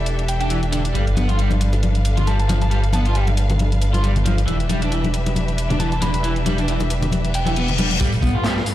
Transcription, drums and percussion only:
0.06 closed hi-hat
0.19 closed hi-hat
0.28 closed hi-hat
0.41 closed hi-hat
0.50 closed hi-hat
0.63 closed hi-hat
0.72 closed hi-hat
0.85 closed hi-hat
0.95 closed hi-hat
1.07 closed hi-hat
1.17 closed hi-hat, high conga
1.29 closed hi-hat
1.39 closed hi-hat
1.51 closed hi-hat, muted conga, high conga
1.61 closed hi-hat
1.73 closed hi-hat, muted conga
1.83 closed hi-hat, high conga
1.95 closed hi-hat
2.05 closed hi-hat
2.17 closed hi-hat, high conga, low conga
2.27 closed hi-hat, muted conga
2.39 closed hi-hat
2.49 closed hi-hat, high conga, low conga
2.62 closed hi-hat
2.71 closed hi-hat
2.84 closed hi-hat
2.93 closed hi-hat, high conga
3.05 closed hi-hat
3.15 closed hi-hat
3.27 closed hi-hat, muted conga, high conga
3.37 closed hi-hat
3.50 closed hi-hat, muted conga, low conga
3.59 closed hi-hat, high conga
3.72 closed hi-hat
3.82 closed hi-hat
3.94 closed hi-hat, high conga
4.04 closed hi-hat
4.16 closed hi-hat, low conga
4.26 closed hi-hat, high conga
4.38 closed hi-hat
4.48 closed hi-hat
4.60 closed hi-hat
4.69 closed hi-hat, high conga
4.82 closed hi-hat
4.92 closed hi-hat
5.04 closed hi-hat, muted conga, high conga
5.14 closed hi-hat
5.26 closed hi-hat, muted conga
5.36 closed hi-hat, high conga
5.48 closed hi-hat
5.58 closed hi-hat
5.70 closed hi-hat, high conga, low conga
5.80 closed hi-hat, muted conga
5.92 closed hi-hat
6.02 closed hi-hat, high conga, low conga
6.14 closed hi-hat
6.24 closed hi-hat
6.36 closed hi-hat
6.46 closed hi-hat, high conga
6.58 closed hi-hat
6.68 closed hi-hat
6.80 closed hi-hat, muted conga, high conga
6.90 closed hi-hat
7.02 closed hi-hat, muted conga, low conga
7.12 closed hi-hat, high conga
7.25 closed hi-hat
7.34 closed hi-hat
7.46 closed hi-hat, high conga
7.56 closed hi-hat
7.68 closed hi-hat, low conga
7.78 closed hi-hat, high conga
7.91 closed hi-hat
8.01 kick, closed hi-hat
8.12 closed hi-hat
8.22 kick, closed hi-hat
8.44 snare, clap, closed hi-hat
8.57 snare
8.66 closed hi-hat

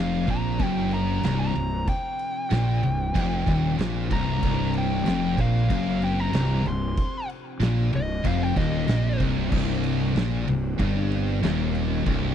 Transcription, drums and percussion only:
0.13 snare
0.28 kick, crash
0.59 kick, crash
0.91 snare, crash
1.23 snare, crash
1.56 crash
1.87 kick, crash
2.19 crash
2.51 snare, crash
2.83 crash
3.15 kick, crash
3.47 kick, snare, crash
3.79 snare, crash
4.11 kick, crash
4.43 kick, crash
4.74 crash
5.06 snare, crash
5.38 kick, crash
5.70 kick, crash
6.02 snare, crash
6.33 snare, crash
6.66 crash
6.97 kick, crash
7.29 crash
7.61 snare, crash
7.79 snare
7.93 crash
8.25 kick, crash
8.56 kick, snare, crash
8.88 snare, crash
9.20 kick, crash
9.52 kick, crash
9.84 ride
10.16 snare, ride
10.48 ride
10.79 kick, ride
11.12 ride
11.43 snare, ride
11.75 ride
12.06 kick, ride

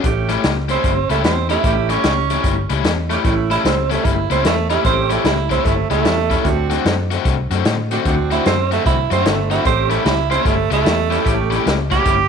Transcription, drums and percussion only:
0.04 kick, snare, closed hi-hat
0.29 snare, closed hi-hat
0.44 snare, closed hi-hat
0.69 snare, closed hi-hat
0.84 kick, snare, closed hi-hat
1.10 snare, closed hi-hat
1.24 snare, closed hi-hat
1.49 snare, closed hi-hat
1.64 kick, snare, closed hi-hat
1.89 snare, closed hi-hat
2.04 snare, closed hi-hat
2.30 snare, closed hi-hat
2.44 kick, snare, closed hi-hat
2.69 snare, closed hi-hat
2.84 snare, closed hi-hat
3.11 snare, closed hi-hat
3.24 kick, snare, closed hi-hat
3.51 snare, closed hi-hat
3.65 snare, closed hi-hat
3.91 snare, closed hi-hat
4.05 kick, snare, closed hi-hat
4.30 snare, closed hi-hat
4.44 snare, closed hi-hat
4.70 snare, closed hi-hat
4.84 kick, snare, closed hi-hat
5.10 snare, closed hi-hat
5.25 snare, closed hi-hat
5.50 kick, snare, closed hi-hat
5.65 kick, snare, closed hi-hat
5.91 snare, closed hi-hat
6.05 snare, closed hi-hat
6.30 kick, snare, closed hi-hat
6.45 kick, snare, closed hi-hat
6.71 snare, closed hi-hat
6.85 snare, closed hi-hat
7.11 snare, closed hi-hat
7.25 kick, snare, closed hi-hat
7.51 snare, closed hi-hat
7.65 snare, closed hi-hat
7.91 snare, closed hi-hat
8.05 kick, snare, closed hi-hat
8.31 snare, closed hi-hat
8.46 snare, closed hi-hat
8.72 snare, closed hi-hat
8.86 kick, snare, closed hi-hat
9.11 snare, closed hi-hat
9.25 snare, closed hi-hat
9.51 snare, closed hi-hat
9.65 kick, snare, closed hi-hat
9.90 snare, closed hi-hat
10.05 snare, closed hi-hat
10.31 snare, closed hi-hat
10.45 kick, snare, closed hi-hat
10.71 snare, closed hi-hat
10.86 snare, closed hi-hat
11.12 snare, closed hi-hat
11.26 kick, snare, closed hi-hat
11.52 snare, closed hi-hat
11.67 snare, closed hi-hat
11.91 kick, snare, closed hi-hat
12.05 kick, snare, closed hi-hat

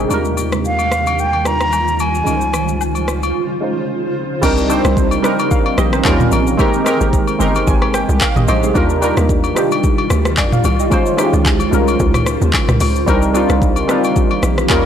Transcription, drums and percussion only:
0.11 high agogo, shaker
0.25 shaker
0.37 high agogo, shaker
0.52 cross-stick, shaker
0.65 shaker
0.79 high agogo, shaker
0.92 cross-stick, shaker
1.07 high agogo, shaker
1.19 shaker
1.33 high agogo
1.45 cross-stick, shaker
1.61 cross-stick, shaker
1.73 high agogo, low woodblock, shaker
1.88 shaker
1.99 high agogo, shaker
2.15 shaker
2.27 high agogo, shaker
2.41 shaker
2.53 cross-stick, high agogo, shaker
2.68 shaker
2.81 low woodblock, shaker
2.95 high agogo, shaker
3.08 cross-stick, shaker
3.23 high agogo, shaker
4.43 kick, crash, high agogo, shaker
4.57 shaker
4.70 high agogo, shaker
4.85 cross-stick, shaker
4.97 kick, shaker
5.11 high agogo, shaker
5.24 cross-stick, shaker
5.39 high agogo, shaker
5.51 kick, shaker
5.66 high agogo
5.78 cross-stick, shaker
5.93 cross-stick, shaker
6.05 kick, clap, high agogo, low woodblock, shaker
6.20 mid tom, shaker
6.32 high agogo, shaker
6.47 shaker
6.59 kick, high agogo, shaker
6.74 shaker
6.86 cross-stick, high agogo, shaker
7.01 shaker
7.13 kick, shaker
7.27 high agogo, shaker
7.41 shaker
7.55 high agogo, shaker
7.67 kick, shaker
7.82 cross-stick, high agogo
7.94 cross-stick, shaker
8.09 shaker
8.21 kick, clap, high agogo, low woodblock, shaker
8.36 mid tom, shaker
8.48 high agogo, shaker
8.63 shaker
8.75 kick, high agogo, shaker
8.90 shaker
9.02 high agogo, shaker
9.17 cross-stick, shaker
9.29 kick, shaker
9.44 high agogo, shaker
9.56 cross-stick, shaker
9.72 high agogo, shaker
9.84 kick, shaker
9.98 high agogo
10.10 cross-stick, shaker
10.25 cross-stick, shaker
10.37 kick, clap, high agogo, low woodblock, shaker
10.52 mid tom, shaker
10.64 high agogo, shaker
10.80 shaker
10.92 kick, high agogo, shaker
11.06 shaker
11.18 cross-stick, high agogo, shaker
11.33 shaker
11.45 kick, clap, low woodblock, shaker
11.60 high agogo, shaker
11.73 shaker
11.88 high agogo, shaker
12.00 kick, shaker
12.14 cross-stick, mid tom, high agogo, shaker
12.26 cross-stick, shaker
12.42 shaker
12.53 kick, clap, high agogo, low woodblock, shaker
12.69 cross-stick, mid tom, shaker
12.80 open hi-hat, high agogo, shaker
12.96 shaker
13.08 kick, high agogo, shaker
13.22 shaker
13.35 high agogo, shaker
13.50 cross-stick, shaker
13.62 kick, shaker
13.76 high agogo, shaker
13.89 cross-stick, shaker
14.04 high agogo, shaker
14.16 kick, shaker
14.31 high agogo
14.43 cross-stick, shaker
14.58 cross-stick, shaker
14.70 kick, clap, high agogo, low woodblock, shaker

